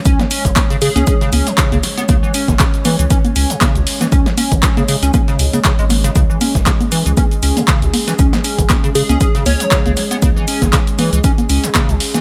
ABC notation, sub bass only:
X:1
M:4/4
L:1/16
Q:"Swing 16ths" 1/4=118
K:C#m
V:1 name="Sub bass" clef=bass
C,, z2 G,,, z3 C,, z2 C,, z2 C,, z2 | C,, z2 G,,, z3 C,, z2 C,, z2 C,, z2 | C,, z2 G,,, z3 C,, z2 C,, z2 G,,,2 z | C,, z2 G,,, z3 C,, z2 C,, z2 C,, z2 |
C,, z2 G,,, z3 C,, z2 C,, z2 C,, z2 | C,, z2 G,,, z3 C,, z2 C,, z2 C,, z2 |]